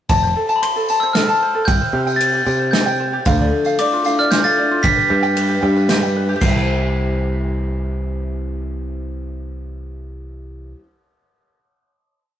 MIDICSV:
0, 0, Header, 1, 6, 480
1, 0, Start_track
1, 0, Key_signature, 0, "major"
1, 0, Tempo, 527241
1, 84, Time_signature, 3, 2, 24, 8
1, 11283, End_track
2, 0, Start_track
2, 0, Title_t, "Glockenspiel"
2, 0, Program_c, 0, 9
2, 509, Note_on_c, 0, 83, 52
2, 568, Note_on_c, 0, 84, 69
2, 569, Note_off_c, 0, 83, 0
2, 903, Note_off_c, 0, 84, 0
2, 911, Note_on_c, 0, 88, 69
2, 1032, Note_on_c, 0, 89, 76
2, 1043, Note_off_c, 0, 88, 0
2, 1504, Note_on_c, 0, 91, 81
2, 1535, Note_off_c, 0, 89, 0
2, 1969, Note_on_c, 0, 93, 92
2, 2011, Note_off_c, 0, 91, 0
2, 2433, Note_off_c, 0, 93, 0
2, 2467, Note_on_c, 0, 91, 73
2, 2811, Note_off_c, 0, 91, 0
2, 3450, Note_on_c, 0, 86, 76
2, 3814, Note_on_c, 0, 89, 80
2, 3818, Note_off_c, 0, 86, 0
2, 3921, Note_off_c, 0, 89, 0
2, 3921, Note_on_c, 0, 91, 85
2, 4035, Note_off_c, 0, 91, 0
2, 4043, Note_on_c, 0, 93, 92
2, 4378, Note_off_c, 0, 93, 0
2, 4396, Note_on_c, 0, 95, 96
2, 5561, Note_off_c, 0, 95, 0
2, 5837, Note_on_c, 0, 96, 74
2, 9758, Note_off_c, 0, 96, 0
2, 11283, End_track
3, 0, Start_track
3, 0, Title_t, "Ukulele"
3, 0, Program_c, 1, 24
3, 85, Note_on_c, 1, 81, 83
3, 208, Note_on_c, 1, 72, 57
3, 326, Note_on_c, 1, 69, 60
3, 435, Note_off_c, 1, 81, 0
3, 446, Note_on_c, 1, 81, 69
3, 556, Note_off_c, 1, 72, 0
3, 567, Note_on_c, 1, 72, 63
3, 681, Note_off_c, 1, 69, 0
3, 691, Note_on_c, 1, 69, 56
3, 806, Note_off_c, 1, 81, 0
3, 817, Note_on_c, 1, 81, 66
3, 927, Note_off_c, 1, 72, 0
3, 938, Note_on_c, 1, 72, 66
3, 1039, Note_off_c, 1, 69, 0
3, 1050, Note_on_c, 1, 69, 72
3, 1159, Note_off_c, 1, 81, 0
3, 1170, Note_on_c, 1, 81, 61
3, 1282, Note_off_c, 1, 72, 0
3, 1293, Note_on_c, 1, 72, 61
3, 1398, Note_off_c, 1, 69, 0
3, 1408, Note_on_c, 1, 69, 60
3, 1521, Note_off_c, 1, 69, 0
3, 1525, Note_on_c, 1, 79, 84
3, 1529, Note_off_c, 1, 81, 0
3, 1531, Note_off_c, 1, 72, 0
3, 1649, Note_on_c, 1, 72, 58
3, 1767, Note_on_c, 1, 67, 59
3, 1869, Note_off_c, 1, 79, 0
3, 1880, Note_on_c, 1, 79, 64
3, 1997, Note_off_c, 1, 72, 0
3, 2008, Note_on_c, 1, 72, 69
3, 2116, Note_off_c, 1, 67, 0
3, 2127, Note_on_c, 1, 67, 59
3, 2235, Note_off_c, 1, 79, 0
3, 2246, Note_on_c, 1, 79, 76
3, 2349, Note_off_c, 1, 72, 0
3, 2360, Note_on_c, 1, 72, 58
3, 2474, Note_off_c, 1, 67, 0
3, 2485, Note_on_c, 1, 67, 74
3, 2593, Note_off_c, 1, 79, 0
3, 2604, Note_on_c, 1, 79, 59
3, 2718, Note_off_c, 1, 72, 0
3, 2729, Note_on_c, 1, 72, 60
3, 2839, Note_off_c, 1, 67, 0
3, 2849, Note_on_c, 1, 67, 64
3, 2965, Note_off_c, 1, 67, 0
3, 2966, Note_off_c, 1, 79, 0
3, 2968, Note_off_c, 1, 72, 0
3, 2969, Note_on_c, 1, 77, 86
3, 3090, Note_on_c, 1, 74, 59
3, 3321, Note_off_c, 1, 77, 0
3, 3332, Note_on_c, 1, 77, 70
3, 3442, Note_off_c, 1, 74, 0
3, 3453, Note_on_c, 1, 74, 76
3, 3575, Note_on_c, 1, 65, 62
3, 3683, Note_off_c, 1, 77, 0
3, 3694, Note_on_c, 1, 77, 76
3, 3800, Note_off_c, 1, 74, 0
3, 3811, Note_on_c, 1, 74, 69
3, 3920, Note_off_c, 1, 65, 0
3, 3931, Note_on_c, 1, 65, 72
3, 4037, Note_off_c, 1, 77, 0
3, 4048, Note_on_c, 1, 77, 69
3, 4157, Note_off_c, 1, 74, 0
3, 4168, Note_on_c, 1, 74, 62
3, 4278, Note_off_c, 1, 65, 0
3, 4289, Note_on_c, 1, 65, 68
3, 4402, Note_off_c, 1, 77, 0
3, 4406, Note_off_c, 1, 74, 0
3, 4406, Note_on_c, 1, 79, 88
3, 4407, Note_off_c, 1, 65, 0
3, 4515, Note_on_c, 1, 71, 70
3, 4639, Note_on_c, 1, 67, 67
3, 4747, Note_off_c, 1, 79, 0
3, 4758, Note_on_c, 1, 79, 80
3, 4870, Note_off_c, 1, 71, 0
3, 4880, Note_on_c, 1, 71, 68
3, 4985, Note_off_c, 1, 67, 0
3, 4996, Note_on_c, 1, 67, 60
3, 5112, Note_off_c, 1, 79, 0
3, 5123, Note_on_c, 1, 79, 74
3, 5236, Note_off_c, 1, 71, 0
3, 5247, Note_on_c, 1, 71, 70
3, 5357, Note_off_c, 1, 67, 0
3, 5368, Note_on_c, 1, 67, 80
3, 5476, Note_off_c, 1, 79, 0
3, 5487, Note_on_c, 1, 79, 68
3, 5596, Note_off_c, 1, 71, 0
3, 5607, Note_on_c, 1, 71, 71
3, 5713, Note_off_c, 1, 67, 0
3, 5724, Note_on_c, 1, 67, 68
3, 5779, Note_off_c, 1, 67, 0
3, 5790, Note_on_c, 1, 67, 65
3, 5842, Note_off_c, 1, 71, 0
3, 5843, Note_off_c, 1, 79, 0
3, 5845, Note_on_c, 1, 72, 59
3, 5897, Note_on_c, 1, 76, 82
3, 9710, Note_off_c, 1, 67, 0
3, 9766, Note_off_c, 1, 72, 0
3, 9817, Note_off_c, 1, 76, 0
3, 11283, End_track
4, 0, Start_track
4, 0, Title_t, "Steel-string acoustic guitar"
4, 0, Program_c, 2, 25
4, 2968, Note_on_c, 2, 50, 71
4, 2976, Note_on_c, 2, 53, 90
4, 2980, Note_on_c, 2, 57, 75
4, 2982, Note_on_c, 2, 62, 88
4, 2988, Note_on_c, 2, 69, 88
4, 3429, Note_off_c, 2, 57, 0
4, 3440, Note_on_c, 2, 57, 54
4, 3445, Note_off_c, 2, 62, 0
4, 3447, Note_off_c, 2, 50, 0
4, 3448, Note_on_c, 2, 62, 55
4, 3451, Note_off_c, 2, 53, 0
4, 3457, Note_off_c, 2, 69, 0
4, 3457, Note_on_c, 2, 64, 56
4, 3468, Note_on_c, 2, 69, 62
4, 3661, Note_off_c, 2, 69, 0
4, 3670, Note_off_c, 2, 64, 0
4, 3672, Note_on_c, 2, 69, 46
4, 3681, Note_off_c, 2, 62, 0
4, 3681, Note_on_c, 2, 64, 47
4, 3683, Note_off_c, 2, 57, 0
4, 3692, Note_on_c, 2, 62, 38
4, 3701, Note_on_c, 2, 57, 38
4, 3902, Note_off_c, 2, 57, 0
4, 3912, Note_off_c, 2, 62, 0
4, 3913, Note_on_c, 2, 57, 61
4, 3919, Note_off_c, 2, 69, 0
4, 3923, Note_off_c, 2, 64, 0
4, 3923, Note_on_c, 2, 62, 55
4, 3934, Note_on_c, 2, 64, 58
4, 3942, Note_on_c, 2, 69, 61
4, 4141, Note_off_c, 2, 69, 0
4, 4152, Note_on_c, 2, 69, 44
4, 4154, Note_off_c, 2, 64, 0
4, 4159, Note_off_c, 2, 57, 0
4, 4160, Note_off_c, 2, 62, 0
4, 4165, Note_on_c, 2, 64, 44
4, 4171, Note_on_c, 2, 62, 41
4, 4180, Note_on_c, 2, 57, 34
4, 4383, Note_off_c, 2, 57, 0
4, 4383, Note_off_c, 2, 62, 0
4, 4386, Note_on_c, 2, 55, 65
4, 4394, Note_on_c, 2, 62, 82
4, 4397, Note_off_c, 2, 64, 0
4, 4398, Note_off_c, 2, 69, 0
4, 4400, Note_on_c, 2, 67, 76
4, 4406, Note_on_c, 2, 71, 81
4, 4859, Note_off_c, 2, 55, 0
4, 4868, Note_off_c, 2, 62, 0
4, 4870, Note_on_c, 2, 55, 59
4, 4878, Note_off_c, 2, 67, 0
4, 4879, Note_on_c, 2, 62, 57
4, 4884, Note_off_c, 2, 71, 0
4, 4889, Note_on_c, 2, 67, 65
4, 4898, Note_on_c, 2, 71, 60
4, 5102, Note_off_c, 2, 71, 0
4, 5113, Note_on_c, 2, 71, 61
4, 5116, Note_off_c, 2, 55, 0
4, 5120, Note_off_c, 2, 62, 0
4, 5120, Note_off_c, 2, 67, 0
4, 5131, Note_on_c, 2, 67, 56
4, 5144, Note_on_c, 2, 62, 42
4, 5354, Note_on_c, 2, 55, 57
4, 5355, Note_off_c, 2, 62, 0
4, 5357, Note_off_c, 2, 71, 0
4, 5362, Note_off_c, 2, 67, 0
4, 5366, Note_on_c, 2, 62, 63
4, 5373, Note_on_c, 2, 67, 63
4, 5383, Note_on_c, 2, 71, 82
4, 5789, Note_on_c, 2, 48, 73
4, 5830, Note_on_c, 2, 52, 75
4, 5836, Note_off_c, 2, 55, 0
4, 5843, Note_off_c, 2, 62, 0
4, 5846, Note_off_c, 2, 67, 0
4, 5851, Note_off_c, 2, 71, 0
4, 5868, Note_on_c, 2, 55, 71
4, 5902, Note_on_c, 2, 60, 82
4, 5932, Note_on_c, 2, 64, 84
4, 5967, Note_on_c, 2, 72, 82
4, 9746, Note_off_c, 2, 48, 0
4, 9786, Note_off_c, 2, 52, 0
4, 9824, Note_off_c, 2, 55, 0
4, 9859, Note_off_c, 2, 60, 0
4, 9889, Note_off_c, 2, 64, 0
4, 9924, Note_off_c, 2, 72, 0
4, 11283, End_track
5, 0, Start_track
5, 0, Title_t, "Picked electric bass"
5, 0, Program_c, 3, 34
5, 86, Note_on_c, 3, 29, 77
5, 300, Note_off_c, 3, 29, 0
5, 1526, Note_on_c, 3, 36, 84
5, 1634, Note_off_c, 3, 36, 0
5, 1758, Note_on_c, 3, 48, 68
5, 2191, Note_off_c, 3, 48, 0
5, 2245, Note_on_c, 3, 48, 84
5, 2888, Note_off_c, 3, 48, 0
5, 2968, Note_on_c, 3, 38, 92
5, 3182, Note_off_c, 3, 38, 0
5, 4404, Note_on_c, 3, 31, 90
5, 4511, Note_off_c, 3, 31, 0
5, 4645, Note_on_c, 3, 43, 69
5, 5072, Note_off_c, 3, 43, 0
5, 5123, Note_on_c, 3, 43, 81
5, 5764, Note_off_c, 3, 43, 0
5, 5839, Note_on_c, 3, 36, 84
5, 9759, Note_off_c, 3, 36, 0
5, 11283, End_track
6, 0, Start_track
6, 0, Title_t, "Drums"
6, 83, Note_on_c, 9, 54, 85
6, 85, Note_on_c, 9, 51, 52
6, 86, Note_on_c, 9, 36, 90
6, 174, Note_off_c, 9, 54, 0
6, 176, Note_off_c, 9, 51, 0
6, 177, Note_off_c, 9, 36, 0
6, 445, Note_on_c, 9, 54, 59
6, 536, Note_off_c, 9, 54, 0
6, 570, Note_on_c, 9, 51, 55
6, 661, Note_off_c, 9, 51, 0
6, 690, Note_on_c, 9, 54, 22
6, 781, Note_off_c, 9, 54, 0
6, 806, Note_on_c, 9, 54, 78
6, 897, Note_off_c, 9, 54, 0
6, 1046, Note_on_c, 9, 38, 68
6, 1046, Note_on_c, 9, 51, 54
6, 1137, Note_off_c, 9, 38, 0
6, 1137, Note_off_c, 9, 51, 0
6, 1173, Note_on_c, 9, 54, 58
6, 1264, Note_off_c, 9, 54, 0
6, 1527, Note_on_c, 9, 51, 54
6, 1527, Note_on_c, 9, 54, 65
6, 1528, Note_on_c, 9, 36, 93
6, 1618, Note_off_c, 9, 51, 0
6, 1618, Note_off_c, 9, 54, 0
6, 1619, Note_off_c, 9, 36, 0
6, 1887, Note_on_c, 9, 54, 56
6, 1978, Note_off_c, 9, 54, 0
6, 2007, Note_on_c, 9, 51, 58
6, 2098, Note_off_c, 9, 51, 0
6, 2126, Note_on_c, 9, 54, 24
6, 2217, Note_off_c, 9, 54, 0
6, 2246, Note_on_c, 9, 54, 78
6, 2337, Note_off_c, 9, 54, 0
6, 2487, Note_on_c, 9, 38, 74
6, 2487, Note_on_c, 9, 51, 48
6, 2487, Note_on_c, 9, 54, 24
6, 2578, Note_off_c, 9, 38, 0
6, 2578, Note_off_c, 9, 51, 0
6, 2578, Note_off_c, 9, 54, 0
6, 2604, Note_on_c, 9, 54, 66
6, 2696, Note_off_c, 9, 54, 0
6, 2961, Note_on_c, 9, 54, 91
6, 2964, Note_on_c, 9, 51, 49
6, 2968, Note_on_c, 9, 36, 99
6, 3052, Note_off_c, 9, 54, 0
6, 3055, Note_off_c, 9, 51, 0
6, 3059, Note_off_c, 9, 36, 0
6, 3319, Note_on_c, 9, 54, 71
6, 3410, Note_off_c, 9, 54, 0
6, 3446, Note_on_c, 9, 51, 56
6, 3537, Note_off_c, 9, 51, 0
6, 3568, Note_on_c, 9, 54, 27
6, 3659, Note_off_c, 9, 54, 0
6, 3683, Note_on_c, 9, 54, 83
6, 3774, Note_off_c, 9, 54, 0
6, 3928, Note_on_c, 9, 38, 70
6, 3928, Note_on_c, 9, 51, 55
6, 3928, Note_on_c, 9, 54, 27
6, 4019, Note_off_c, 9, 38, 0
6, 4019, Note_off_c, 9, 51, 0
6, 4019, Note_off_c, 9, 54, 0
6, 4039, Note_on_c, 9, 54, 65
6, 4130, Note_off_c, 9, 54, 0
6, 4400, Note_on_c, 9, 54, 75
6, 4405, Note_on_c, 9, 36, 97
6, 4405, Note_on_c, 9, 51, 54
6, 4491, Note_off_c, 9, 54, 0
6, 4496, Note_off_c, 9, 36, 0
6, 4496, Note_off_c, 9, 51, 0
6, 4526, Note_on_c, 9, 54, 25
6, 4617, Note_off_c, 9, 54, 0
6, 4761, Note_on_c, 9, 54, 64
6, 4852, Note_off_c, 9, 54, 0
6, 4885, Note_on_c, 9, 51, 64
6, 4976, Note_off_c, 9, 51, 0
6, 5244, Note_on_c, 9, 54, 27
6, 5335, Note_off_c, 9, 54, 0
6, 5362, Note_on_c, 9, 38, 76
6, 5362, Note_on_c, 9, 51, 57
6, 5453, Note_off_c, 9, 38, 0
6, 5453, Note_off_c, 9, 51, 0
6, 5480, Note_on_c, 9, 54, 66
6, 5571, Note_off_c, 9, 54, 0
6, 5724, Note_on_c, 9, 54, 24
6, 5815, Note_off_c, 9, 54, 0
6, 5838, Note_on_c, 9, 49, 73
6, 5841, Note_on_c, 9, 36, 95
6, 5843, Note_on_c, 9, 54, 75
6, 5929, Note_off_c, 9, 49, 0
6, 5932, Note_off_c, 9, 36, 0
6, 5934, Note_off_c, 9, 54, 0
6, 11283, End_track
0, 0, End_of_file